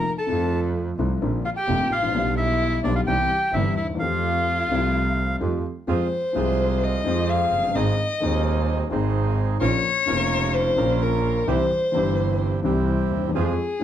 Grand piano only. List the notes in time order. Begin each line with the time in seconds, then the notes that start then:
0.26 F2 C3 F3 A3
0.31 F4
0.99 C2 C3 F3 A3 F4
1.21 A#1 A#2 D3 A#3 C4 F4
1.68 F1 F2 D3 A#3 C4 F4
1.97 G#1
2.03 A1
2.08 A#1
2.13 B1 B2 D3 G3 B3 G4
2.84 B1 B2 D3 G3 B3 G4
3.07 C2 C3 E3 G3 C4 G4
3.54 G1 G2 E3 G3 C4 G4
3.84 D2
3.89 D#2
3.95 E2 F3
4.00 F2 A3 C4 G4
4.69 C2 C3 F3 A3 C4
4.73 G4
5.41 F2 F3 A3 C4 G4
5.87 F2 F3 G#3 C4 G#4
6.33 C2 C3 F3 G#3 C4
6.37 G#4
7.04 F2 F3 G#3 C4 G#4
7.57 F1
7.64 F#1
7.69 G1
7.75 G#1 G#2 D#3 G#3 C4 G#4
8.20 D#1 D#2 D#3 G#3 C4 G#4
8.89 G#1 G#2 D#3 G#3 C4 G#4
9.61 A#1 A#2 C#3 F3 A#3 F4
10.06 F1 F2 C#3 F3 A#3 F4
10.76 A#1 A#2 C#3 F3 A#3
10.80 F4
11.47 C2 C3 E3 G3 C4 G4
11.92 G1 G2 E3 G3 C4
11.96 G4
12.62 C2 C3 E3 G3 C4
12.66 G4
13.18 D2
13.24 D#2
13.29 E2
13.34 F2 F3 G#3 C4 G#4
13.79 F3